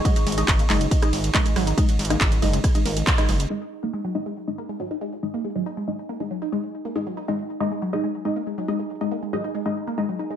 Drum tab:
RD |x-x-x-x-x-x-x-x-x-x-x-x-x-x-x-x-|x-x-x-x-x-x-x-x-x-x-x-x-x-x-x-x-|--------------------------------|--------------------------------|
HH |x-x-oxx-x-x-o-x-x-x-o-x-x-x-o-x-|x-x-oxx-x-x-o-x-x-x-o-x-x-x-o-x-|--x-xxx-x-x-x-x-x-x---x-x-x---x-|x-x-xxx-x-x-x-x-x-x---x-x-x---x-|
CP |--------x---x-----------x-------|--------x---------------x-------|--------------------------------|--------------------------------|
SD |--------r---------r---------r---|------r---------r---------r-----|--------------------------------|--------------------------------|
BD |o-------o-------o-------o-------|o-------o-------o-------o-------|--------------------------------|--------------------------------|

RD |--------------------------------|--------------------------------|
HH |x-x-xxx-x-x-x-x-x-x---x-x-x---x-|x-x-xxx-x-x-x-x-x-x---x-x-x---x-|
CP |--------------------------------|--------------------------------|
SD |--------------------------------|--------------------------------|
BD |--------------------------------|--------------------------------|